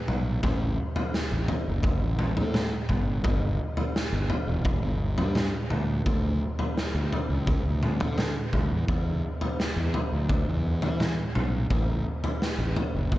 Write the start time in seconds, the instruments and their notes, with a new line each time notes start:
0.08 fingered electric bass B1, mid tom
0.43 fingered electric bass A1, kick, floor tom
0.96 floor tom
1.14 snare
1.32 fingered electric bass A1
1.48 floor tom
1.68 fingered electric bass F#1
1.83 kick, floor tom
2.02 fingered electric bass A1
2.19 mid tom
2.37 fingered electric bass A2, floor tom
2.54 snare, mid tom
2.89 fingered electric bass G1, kick, mid tom
3.24 fingered electric bass G1, kick, floor tom
3.77 floor tom
3.96 snare
4.12 fingered electric bass G1
4.30 floor tom
4.47 fingered electric bass E1
4.65 kick, floor tom
4.82 fingered electric bass G1
5.18 fingered electric bass G2, floor tom
5.35 snare, mid tom
5.70 fingered electric bass D2, mid tom
6.06 fingered electric bass D2, kick, floor tom
6.59 floor tom
6.78 snare
6.95 fingered electric bass D2
7.13 floor tom
7.29 fingered electric bass C#2
7.47 kick, floor tom
7.65 fingered electric bass D2
7.83 mid tom
8.00 fingered electric bass D3, floor tom
8.18 snare, mid tom
8.53 fingered electric bass D2, kick, mid tom
8.72 fingered electric bass E2
8.88 fingered electric bass E2, kick, floor tom
9.41 floor tom
9.60 snare
9.76 fingered electric bass E2
9.94 floor tom
10.12 fingered electric bass D2
10.29 kick, floor tom
10.49 fingered electric bass E2
10.82 fingered electric bass E3, floor tom
11.00 snare, mid tom
11.35 fingered electric bass B1, mid tom
11.70 fingered electric bass A1, kick, floor tom
12.24 floor tom
12.42 snare
12.58 fingered electric bass A1
12.76 floor tom
12.95 fingered electric bass F#1
13.12 kick, floor tom